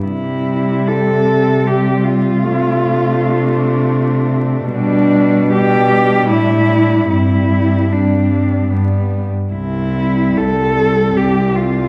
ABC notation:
X:1
M:3/4
L:1/16
Q:1/4=76
K:C
V:1 name="Cello"
E4 A4 G2 F2- | F8- F2 z2 | D4 G4 E4 | E4 D4 z4 |
E4 A4 G2 F2 |]
V:2 name="Cello"
C8 C4 | D12 | D4 D8 | C4 C4 B,3 z |
z2 C4 C4 C2 |]
V:3 name="Cello" clef=bass
G,8 G,4 | A,12 | G,4 G,8 | G,4 G,4 G,3 z |
z2 G,4 G,4 G,2 |]
V:4 name="Cello" clef=bass
C,12 | C,12 | B,,8 A,,4 | G,,8 G,,3 z |
C,,4 C,,4 C,,4 |]